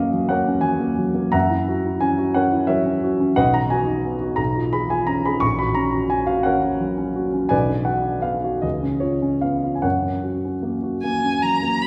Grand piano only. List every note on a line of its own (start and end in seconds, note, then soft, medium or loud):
0.00 1.29 F#2 soft
0.00 0.30 A#3 soft
0.00 0.48 C#4 soft
0.00 1.36 F#4 medium
0.00 0.30 A#4 medium
0.00 1.37 D#5 medium
0.00 0.31 F5 medium
0.13 0.41 F#3 soft
0.29 0.58 A#3 soft
0.29 0.62 A#4 medium
0.29 0.62 C#5 medium
0.29 0.64 F#5 medium
0.48 0.75 C#4 soft
0.61 0.91 F#3 soft
0.61 1.32 G#5 medium
0.80 1.09 A#3 soft
0.98 1.26 F#3 soft
1.15 1.33 A#3 soft
1.32 3.32 F#2 soft
1.32 1.97 E5 medium
1.32 1.97 F#5 medium
1.32 2.01 A#5 medium
1.50 1.78 E4 soft
1.68 1.95 F#4 soft
1.86 2.12 E4 soft
2.01 2.29 C#4 soft
2.01 2.35 G#5 medium
2.18 2.45 F#4 soft
2.34 2.62 C#4 soft
2.34 2.67 A#4 medium
2.34 2.67 C#5 soft
2.34 2.68 F#5 medium
2.53 2.79 E4 soft
2.67 2.96 F#3 soft
2.67 3.32 A#4 soft
2.67 3.33 C#5 soft
2.67 3.36 E5 medium
2.86 3.13 C#4 soft
3.03 3.30 F#4 soft
3.20 3.37 C#4 soft
3.36 4.36 B1 medium
3.36 3.53 B4 medium
3.36 3.53 D#5 medium
3.36 3.54 F#5 medium
3.54 3.82 D#4 soft
3.54 3.71 A#5 medium
3.70 3.98 F#4 soft
3.70 4.39 G#5 medium
3.87 4.15 D#4 soft
4.05 4.32 B3 soft
4.21 4.39 F#4 soft
4.36 5.39 B1 soft
4.36 4.72 A#5 medium
4.56 4.84 F4 soft
4.73 5.01 G#4 soft
4.73 4.90 B5 medium
4.90 5.18 F4 soft
4.90 5.08 G#5 medium
5.07 5.36 C#4 soft
5.07 5.25 A#5 medium
5.26 5.43 G#4 soft
5.26 5.43 B5 medium
5.40 7.48 A#1 soft
5.40 5.58 C#6 medium
5.59 5.86 F#4 soft
5.59 5.76 B5 medium
5.75 6.04 C#4 soft
5.75 6.10 A#5 medium
5.94 6.22 F#4 soft
6.10 6.39 C#4 soft
6.10 6.28 G#5 medium
6.27 6.56 F#4 soft
6.27 6.45 F5 medium
6.43 6.74 C#4 soft
6.43 7.48 A#4 medium
6.43 7.48 C#5 medium
6.43 7.51 F#5 medium
6.62 6.91 F#4 soft
6.81 7.09 F#3 soft
6.98 7.27 C#4 soft
7.16 7.45 F#4 soft
7.33 7.52 C#4 soft
7.49 8.59 B1 soft
7.49 7.85 B4 medium
7.49 7.85 D5 medium
7.49 7.87 G#5 medium
7.70 7.99 D4 soft
7.85 8.16 F#4 soft
7.85 8.23 F#5 medium
8.05 8.36 D4 soft
8.22 8.55 B3 soft
8.22 8.62 F5 medium
8.44 8.63 F#4 soft
8.62 9.80 C#2 soft
8.62 9.02 D#5 medium
8.82 9.15 C#4 soft
9.00 9.34 F4 soft
9.00 9.42 C#5 medium
9.22 9.55 C#4 soft
9.41 9.75 B3 soft
9.41 9.75 F5 medium
9.63 9.84 F4 soft
9.75 9.84 G#5 soft
9.82 11.87 F#2 soft
9.82 11.78 A#4 soft
9.82 11.78 C#5 soft
9.82 11.82 F#5 medium
10.03 10.36 C#4 soft
10.23 10.56 F#4 soft
10.45 10.76 C#4 soft
10.63 10.95 A#3 soft
10.83 11.15 F#4 soft
11.04 11.35 A#3 soft
11.24 11.55 C#4 soft
11.43 11.75 F#3 soft
11.63 11.87 A#3 soft
11.83 11.87 F#4 soft